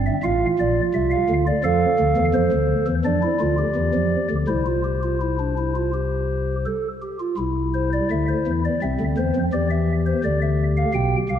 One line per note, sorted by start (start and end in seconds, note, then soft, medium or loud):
0.00 0.10 G1 medium
0.00 0.10 G2 medium
0.00 0.14 C4 medium
0.06 0.21 E5 medium
0.23 0.45 A1 medium
0.23 0.46 A2 medium
0.23 1.45 F4 medium
0.23 0.46 F5 medium
0.59 0.81 A#1 medium
0.59 0.81 A#2 medium
0.59 0.81 D5 medium
0.94 1.16 C2 medium
0.94 1.16 C3 medium
0.94 1.09 E5 medium
1.11 1.33 F5 medium
1.29 1.51 D2 medium
1.29 1.51 D3 medium
1.47 1.62 D5 medium
1.64 1.86 F2 medium
1.64 1.86 F3 medium
1.64 2.85 A4 medium
1.64 2.25 F5 medium
1.99 2.14 D2 medium
1.99 2.14 D3 medium
2.16 2.32 E2 medium
2.16 2.32 E3 medium
2.34 2.49 F2 medium
2.34 2.50 F3 medium
2.34 2.95 C5 medium
2.52 2.74 D2 medium
2.52 2.74 D3 medium
2.87 3.03 E2 medium
2.87 3.02 E3 medium
3.05 3.27 F2 medium
3.05 3.27 F3 medium
3.05 3.20 D4 medium
3.05 4.28 D5 medium
3.22 3.38 E4 medium
3.40 3.63 D2 medium
3.40 3.63 D3 medium
3.40 3.56 F4 medium
3.58 4.35 G4 medium
3.75 3.91 E2 medium
3.75 3.91 E3 medium
3.94 4.16 F2 medium
3.94 4.16 F3 medium
4.30 4.46 D2 medium
4.30 4.46 D3 medium
4.48 6.66 C2 medium
4.48 6.66 C3 medium
4.48 4.63 E4 medium
4.48 6.66 C5 medium
4.66 4.82 F4 medium
4.84 5.00 G4 medium
5.03 5.18 F4 medium
5.21 5.37 E4 medium
5.39 5.55 D4 medium
5.58 5.73 E4 medium
5.75 5.91 F4 medium
5.93 6.56 G4 medium
6.65 6.88 A4 soft
7.02 7.17 G4 medium
7.20 7.36 F4 medium
7.38 8.00 C2 medium
7.38 8.00 C3 medium
7.38 8.61 E4 medium
7.74 7.90 C5 medium
7.93 8.08 D5 medium
8.11 8.33 D2 medium
8.11 8.33 D3 medium
8.11 8.26 E5 medium
8.29 8.51 C5 medium
8.47 8.69 E2 medium
8.47 8.69 E3 soft
8.65 8.80 D5 medium
8.82 8.97 C2 medium
8.82 8.97 C3 medium
8.82 9.43 C4 medium
8.82 9.04 E5 medium
9.00 9.15 D2 medium
9.00 9.15 D3 medium
9.17 9.32 E2 medium
9.17 9.33 E3 medium
9.17 9.39 C5 medium
9.35 9.51 F2 medium
9.35 9.50 F3 medium
9.53 10.14 E2 medium
9.53 10.14 E3 medium
9.53 11.35 G4 medium
9.53 9.68 D5 medium
9.71 9.93 E5 medium
10.06 10.21 C5 medium
10.24 10.85 D2 medium
10.24 10.85 D3 medium
10.24 10.39 D5 medium
10.42 10.64 E5 medium
10.77 10.92 F5 medium
10.94 11.16 B1 medium
10.94 11.16 B2 medium
10.94 11.16 G5 medium
11.29 11.39 C2 medium
11.29 11.39 C3 medium
11.29 11.39 F5 medium